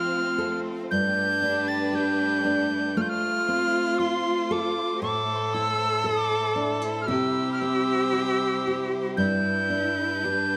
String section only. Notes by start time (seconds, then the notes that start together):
Already playing: A3 F4 C5
0.91 G4 B4
2.96 F4 C5
5.04 E4
7.10 G3 C5
9.19 D4 B4